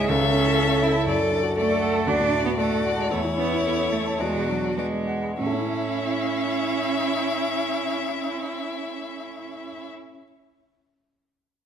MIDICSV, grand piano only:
0, 0, Header, 1, 2, 480
1, 0, Start_track
1, 0, Key_signature, 3, "major"
1, 0, Tempo, 498753
1, 1031, Time_signature, 4, 2, 24, 8
1, 2487, Tempo, 539568
1, 3927, Tempo, 578035
1, 4407, Tempo, 610998
1, 9807, End_track
2, 0, Start_track
2, 0, Title_t, "Grand piano"
2, 0, Program_c, 0, 0
2, 0, Control_c, 0, 64, 127
2, 0, Note_on_c, 0, 37, 73
2, 0, Note_on_c, 0, 44, 69
2, 0, Note_on_c, 0, 61, 61
2, 0, Note_on_c, 0, 64, 67
2, 0, Note_on_c, 0, 68, 62
2, 0, Note_on_c, 0, 73, 67
2, 0, Note_on_c, 0, 76, 70
2, 0, Note_on_c, 0, 80, 67
2, 88, Note_off_c, 0, 37, 0
2, 88, Note_on_c, 0, 37, 83
2, 106, Control_c, 0, 64, 0
2, 107, Note_off_c, 0, 76, 0
2, 110, Note_off_c, 0, 68, 0
2, 110, Note_off_c, 0, 73, 0
2, 111, Note_off_c, 0, 44, 0
2, 113, Note_off_c, 0, 64, 0
2, 114, Note_off_c, 0, 80, 0
2, 115, Note_off_c, 0, 61, 0
2, 204, Note_on_c, 0, 49, 62
2, 261, Control_c, 0, 64, 127
2, 317, Note_on_c, 0, 61, 63
2, 393, Note_off_c, 0, 49, 0
2, 437, Note_on_c, 0, 64, 57
2, 508, Note_off_c, 0, 61, 0
2, 554, Note_on_c, 0, 69, 64
2, 626, Note_off_c, 0, 64, 0
2, 661, Note_on_c, 0, 73, 65
2, 744, Note_off_c, 0, 69, 0
2, 780, Note_on_c, 0, 76, 74
2, 857, Note_off_c, 0, 73, 0
2, 901, Note_on_c, 0, 81, 66
2, 976, Note_off_c, 0, 76, 0
2, 1003, Note_off_c, 0, 37, 0
2, 1021, Note_on_c, 0, 42, 70
2, 1025, Note_off_c, 0, 81, 0
2, 1051, Control_c, 0, 64, 0
2, 1141, Note_on_c, 0, 54, 62
2, 1189, Control_c, 0, 64, 127
2, 1257, Note_on_c, 0, 62, 62
2, 1339, Note_off_c, 0, 54, 0
2, 1375, Note_on_c, 0, 66, 69
2, 1457, Note_off_c, 0, 62, 0
2, 1497, Note_on_c, 0, 69, 64
2, 1576, Note_off_c, 0, 66, 0
2, 1622, Note_on_c, 0, 74, 71
2, 1698, Note_off_c, 0, 69, 0
2, 1735, Note_on_c, 0, 78, 64
2, 1820, Note_off_c, 0, 74, 0
2, 1861, Note_on_c, 0, 81, 67
2, 1937, Note_off_c, 0, 78, 0
2, 1962, Note_off_c, 0, 42, 0
2, 1984, Note_on_c, 0, 38, 71
2, 1989, Note_off_c, 0, 81, 0
2, 2014, Control_c, 0, 64, 0
2, 2112, Note_on_c, 0, 45, 66
2, 2197, Control_c, 0, 64, 127
2, 2230, Note_on_c, 0, 62, 64
2, 2311, Note_off_c, 0, 45, 0
2, 2347, Note_on_c, 0, 66, 61
2, 2433, Note_off_c, 0, 62, 0
2, 2479, Note_on_c, 0, 69, 63
2, 2550, Note_off_c, 0, 66, 0
2, 2597, Note_on_c, 0, 74, 62
2, 2670, Note_off_c, 0, 69, 0
2, 2713, Note_on_c, 0, 78, 71
2, 2787, Note_off_c, 0, 74, 0
2, 2826, Note_on_c, 0, 81, 70
2, 2905, Note_off_c, 0, 78, 0
2, 2923, Note_off_c, 0, 38, 0
2, 2950, Note_off_c, 0, 81, 0
2, 2950, Note_on_c, 0, 40, 68
2, 2973, Control_c, 0, 64, 0
2, 3072, Note_on_c, 0, 52, 58
2, 3122, Control_c, 0, 64, 127
2, 3195, Note_on_c, 0, 61, 58
2, 3265, Note_off_c, 0, 52, 0
2, 3324, Note_on_c, 0, 64, 64
2, 3388, Note_off_c, 0, 61, 0
2, 3445, Note_on_c, 0, 69, 54
2, 3513, Note_off_c, 0, 64, 0
2, 3561, Note_on_c, 0, 73, 60
2, 3636, Note_off_c, 0, 69, 0
2, 3682, Note_on_c, 0, 76, 59
2, 3755, Note_off_c, 0, 73, 0
2, 3801, Note_on_c, 0, 81, 61
2, 3879, Note_off_c, 0, 76, 0
2, 3895, Note_off_c, 0, 40, 0
2, 3914, Note_on_c, 0, 40, 66
2, 3926, Note_off_c, 0, 81, 0
2, 3944, Control_c, 0, 64, 0
2, 4042, Note_on_c, 0, 47, 55
2, 4092, Control_c, 0, 64, 127
2, 4151, Note_on_c, 0, 62, 56
2, 4234, Note_off_c, 0, 47, 0
2, 4274, Note_on_c, 0, 66, 47
2, 4351, Note_off_c, 0, 62, 0
2, 4401, Note_on_c, 0, 71, 55
2, 4473, Note_off_c, 0, 66, 0
2, 4517, Note_on_c, 0, 74, 52
2, 4595, Note_off_c, 0, 71, 0
2, 4638, Note_on_c, 0, 78, 64
2, 4716, Note_off_c, 0, 74, 0
2, 4757, Note_on_c, 0, 83, 48
2, 4836, Note_off_c, 0, 78, 0
2, 4854, Note_off_c, 0, 40, 0
2, 4882, Note_off_c, 0, 83, 0
2, 4885, Note_on_c, 0, 45, 61
2, 4907, Control_c, 0, 64, 0
2, 4943, Note_on_c, 0, 57, 62
2, 4996, Note_on_c, 0, 61, 55
2, 5044, Control_c, 0, 64, 127
2, 5051, Note_on_c, 0, 64, 62
2, 5106, Note_on_c, 0, 69, 57
2, 5159, Note_on_c, 0, 76, 57
2, 8266, Control_c, 0, 64, 0
2, 8421, Note_off_c, 0, 45, 0
2, 8478, Note_off_c, 0, 57, 0
2, 8532, Note_off_c, 0, 61, 0
2, 8587, Note_off_c, 0, 64, 0
2, 8641, Note_off_c, 0, 69, 0
2, 8694, Note_off_c, 0, 76, 0
2, 9807, End_track
0, 0, End_of_file